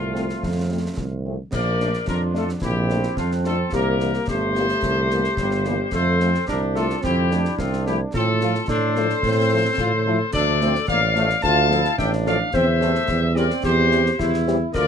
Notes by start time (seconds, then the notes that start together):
Already playing: C2 F3 A3 C4 F4
0.14 F3 A3 C4, snare
0.29 snare
0.42 F2, concert bass drum, snare
0.69 F3 A3 C4
0.97 C2, concert bass drum, snare
1.25 F3 A3 C4
1.52 A#1 A#4 D5, concert bass drum, snare, crash
1.80 F3 A3 D4, snare
1.93 snare
2.07 F2 D4 F4 A#4, concert bass drum, snare
2.34 F3 A3 D4 F4 A4, snare
2.49 snare
2.61 A#1 C4 E4 G4, concert bass drum, snare
2.90 F3 A3 D4, snare
3.03 snare
3.17 F2 D4 F4, concert bass drum, snare
3.31 snare
3.44 F3 A3 D4 F4 A4, snare
3.72 C2 A#3 G4 A#4, concert bass drum, snare
4.00 E3 G3 A#3, snare
4.14 snare
4.28 G1 A3 G4 C5, concert bass drum, snare
4.55 E3 G3 A#3, snare
4.69 snare
4.82 C2, concert bass drum, snare
5.11 E3 G3 A#3, snare
5.24 snare
5.37 G1 G3, concert bass drum, snare
5.51 snare
5.65 E3 G3 A#3, snare
5.92 F2 A3 A4 C5, concert bass drum, snare, crash
6.20 F3 A3 C4, snare
6.34 snare
6.46 C2 D4 G4 A#4, concert bass drum, snare
6.75 F3 A3 F4 A4, snare
6.90 snare
7.02 F2 C4 E4 G4, concert bass drum, snare
7.30 F3 A3 D4, snare
7.45 snare
7.58 C2 C4 F4, concert bass drum, snare
7.73 snare
7.85 F3 A3 E4 G4, snare
8.13 A2 C4 F4 A4, concert bass drum, snare
8.41 F3 A3 F4, snare
8.55 snare
8.68 A2 D4 A4 C5, concert bass drum, snare
8.96 F3 A3, snare
9.10 snare
9.23 A2 C4, concert bass drum, snare
9.52 F3 A3
9.78 A2 F4, concert bass drum, snare
10.06 F3 A3 E4
10.33 D2 D4 A4 D5, concert bass drum, snare, crash
10.61 F3 A3 C4, snare
10.75 snare
10.87 A1 A#3 D5 F5, concert bass drum, snare
11.15 F3 A3, snare
11.30 snare
11.42 D2 F4 F5 A5, concert bass drum, snare
11.69 F3 A3 E4, snare
11.85 snare
11.98 A1 D4 E5 G5, concert bass drum, snare
12.13 snare
12.26 F3 A3 D5 F5, snare
12.53 E2 C4 C5 E5, concert bass drum, snare
12.80 E3 G3 A3 C4, snare
12.95 snare
13.08 E2 G3, concert bass drum, snare
13.35 E3 G3 C4 A#4 D5, snare
13.50 snare
13.63 E2 G4 C5, concert bass drum, snare
13.91 E3 G3 C4, snare
14.06 snare
14.19 E2 E4, concert bass drum, snare
14.34 snare
14.47 E3 G3 C4, snare
14.73 D2 F4 A#4 D5, concert bass drum, snare, crash